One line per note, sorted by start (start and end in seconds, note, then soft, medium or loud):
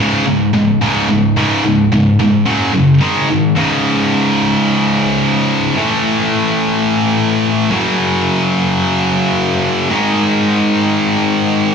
0.00 0.24 C#2 medium
0.00 0.25 G#2 medium
0.00 0.25 C#3 loud
0.26 0.51 C#2 medium
0.26 0.51 G#2 medium
0.54 0.78 C#2 medium
0.54 0.79 G#2 medium
0.81 1.07 C#2 medium
0.81 1.07 G#2 loud
0.81 1.07 C#3 loud
1.08 1.33 C#2 medium
1.08 1.33 G#2 medium
1.36 1.62 C#2 medium
1.36 1.62 G#2 loud
1.36 1.62 C#3 medium
1.64 1.89 C#2 medium
1.64 1.89 G#2 medium
1.92 2.16 C#2 medium
1.92 2.17 G#2 medium
2.20 2.44 C#2 medium
2.20 2.44 G#2 medium
2.46 2.72 F#2 medium
2.46 2.72 C#3 medium
2.46 2.72 F#3 medium
2.73 2.98 F#2 medium
2.73 2.98 C#3 medium
3.01 3.27 G#2 medium
3.01 3.27 D#3 medium
3.01 3.28 G#3 loud
3.29 3.54 G#2 medium
3.29 3.54 D#3 medium
3.56 5.75 C#2 medium
3.56 5.76 G#2 medium
3.56 5.76 C#3 medium
5.76 7.68 A2 loud
5.76 7.68 E3 medium
5.76 7.69 A3 loud
7.70 9.89 F#2 medium
7.70 9.90 C#3 medium
7.70 9.90 F#3 loud
9.90 11.75 G#2 medium
9.90 11.75 D#3 loud
9.90 11.75 G#3 loud